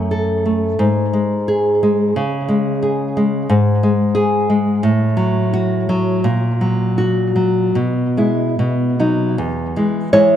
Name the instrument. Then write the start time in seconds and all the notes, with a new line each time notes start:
nylon-string guitar
Already playing: F#2 A3
0.11 A4
0.46 A3
0.79 G#2
1.13 G#3
1.48 G#4
1.83 G#3
2.16 C#3
2.48 G#3
2.83 G#4
3.17 G#3
3.50 G#2
3.83 G#3
4.15 G#4
4.50 G#3
4.83 A2
5.17 F#3
5.53 F#4
5.89 F#3
6.24 A#2
6.61 F#3
6.98 F#4
7.36 F#3
7.75 B2
8.17 G#3 E4
8.59 B2
8.99 F#3 D#4
9.38 E2
9.76 E3 G#3
10.13 E3 G#3 E4 C#5